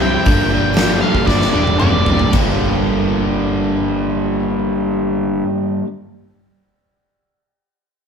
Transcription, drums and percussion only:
0.26 kick, open hi-hat
0.77 snare, open hi-hat
1.15 kick
1.27 kick, snare
1.41 snare
1.67 high tom
1.80 mid tom
2.06 floor tom
2.19 floor tom
2.33 kick, crash

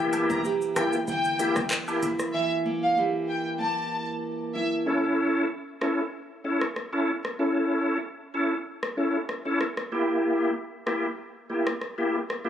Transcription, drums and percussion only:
0.13 closed hi-hat, cabasa, high woodblock, shaker
0.30 kick, shaker
0.45 shaker
0.61 shaker
0.76 cross-stick, closed hi-hat, cabasa, high woodblock, shaker
0.93 shaker
1.08 shaker
1.24 shaker
1.39 closed hi-hat, cabasa, shaker
1.56 kick, cross-stick, shaker
1.71 cross-stick, clap, shaker
1.88 high woodblock, shaker
2.03 closed hi-hat, cabasa, shaker
2.19 cross-stick, shaker
5.82 cross-stick
6.61 cross-stick
6.76 cross-stick
7.25 cross-stick
8.83 cross-stick
9.29 cross-stick
9.61 cross-stick
9.77 cross-stick
10.87 cross-stick
11.67 cross-stick
11.81 cross-stick
12.30 cross-stick

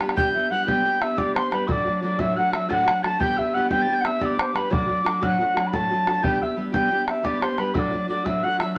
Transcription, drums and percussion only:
0.01 bodhran
0.09 bodhran
0.17 bodhran
0.68 bodhran
1.02 bodhran
1.18 bodhran
1.36 bodhran
1.52 bodhran
1.69 bodhran
1.86 bodhran
2.19 bodhran
2.53 bodhran
2.70 bodhran
2.88 bodhran
3.04 bodhran
3.20 bodhran
3.38 bodhran
3.71 bodhran
4.05 bodhran
4.21 bodhran
4.39 bodhran
4.56 bodhran
4.73 bodhran
4.90 bodhran
5.06 bodhran
5.23 bodhran
5.57 bodhran
5.73 bodhran
6.07 bodhran
6.24 bodhran
6.42 bodhran
6.74 bodhran
7.08 bodhran
7.25 bodhran
7.42 bodhran
7.58 bodhran
7.75 bodhran
7.93 bodhran
8.26 bodhran
8.60 bodhran

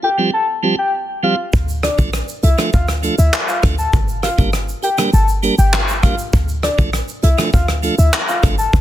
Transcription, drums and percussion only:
1.53 kick, shaker
1.68 shaker
1.83 cross-stick, closed hi-hat, shaker
1.99 kick, shaker
2.13 cross-stick, shaker
2.28 shaker
2.43 closed hi-hat, shaker
2.58 cross-stick, shaker
2.73 kick, shaker
2.88 cross-stick, shaker
3.03 closed hi-hat, shaker
3.19 shaker
3.34 clap, shaker
3.48 shaker
3.63 kick, cross-stick, closed hi-hat, shaker
3.78 shaker
3.93 kick, shaker
4.08 shaker
4.23 cross-stick, closed hi-hat, shaker
4.38 kick, shaker
4.53 cross-stick, shaker
4.68 shaker
4.83 closed hi-hat, shaker
4.98 cross-stick, shaker
5.13 shaker
5.28 shaker
5.43 closed hi-hat, shaker
5.59 shaker
5.73 cross-stick, clap, shaker
5.88 shaker
6.03 kick, cross-stick, closed hi-hat, shaker
6.18 shaker
6.33 kick, shaker
6.48 shaker
6.63 cross-stick, closed hi-hat, shaker
6.79 kick, shaker
6.93 cross-stick, shaker
7.08 shaker
7.23 closed hi-hat, shaker
7.38 cross-stick, shaker
7.53 kick, shaker
7.68 cross-stick, shaker
7.83 closed hi-hat, shaker
7.99 shaker
8.14 clap, shaker
8.29 shaker
8.43 kick, cross-stick, closed hi-hat, shaker
8.58 shaker
8.73 kick, shaker

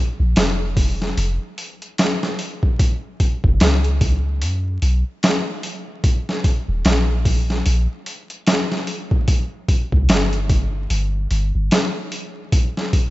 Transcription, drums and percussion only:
0.36 snare, open hi-hat
0.77 kick, open hi-hat
1.02 snare
1.18 open hi-hat
1.58 open hi-hat
1.82 closed hi-hat
1.98 snare, open hi-hat
2.23 snare
2.39 open hi-hat
2.63 kick
2.79 kick, open hi-hat
3.20 kick, open hi-hat
3.44 kick
3.60 snare, open hi-hat
3.84 closed hi-hat
4.01 kick, open hi-hat
4.42 open hi-hat
4.82 open hi-hat
5.23 snare, open hi-hat
5.63 open hi-hat
6.04 kick, open hi-hat
6.29 snare
6.44 kick, open hi-hat
6.85 snare, open hi-hat
7.25 kick, open hi-hat
7.50 snare
7.66 open hi-hat
8.06 open hi-hat
8.30 closed hi-hat
8.47 snare, open hi-hat
8.72 snare
8.87 open hi-hat
9.11 kick
9.28 kick, open hi-hat
9.68 kick, open hi-hat
9.92 kick
10.09 snare, open hi-hat
10.33 closed hi-hat
10.50 kick, open hi-hat
10.90 open hi-hat
11.31 open hi-hat
11.71 snare, open hi-hat
12.12 open hi-hat
12.52 kick, open hi-hat
12.77 snare
12.93 kick, open hi-hat

